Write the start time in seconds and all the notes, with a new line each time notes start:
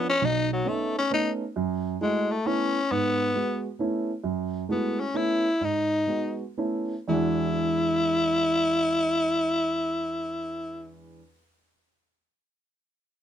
0.09 C#4
0.22 B1 D#4
0.53 F#3
0.65 A3 B3 C#4 D#4
0.98 C#4
1.11 A3 B3 C#4 D#4
1.56 F#2
2.01 G#3 A3 E4 F#4
2.31 A3
2.46 A3 B3 C#4 E4
2.91 G#2 B3
3.35 G#3 B3 F#4
3.79 A3 B3 C#4 E4
4.24 F#2
4.69 G#3 A3 B3 E4 F#4
5.00 C#4
5.14 A3 B3 C#4 E4
5.61 G#2 D#4
6.07 G#3 B3 F#4
6.58 A3 B3 C#4 E4
7.08 E2 E3 G#3 D4 E4 F#4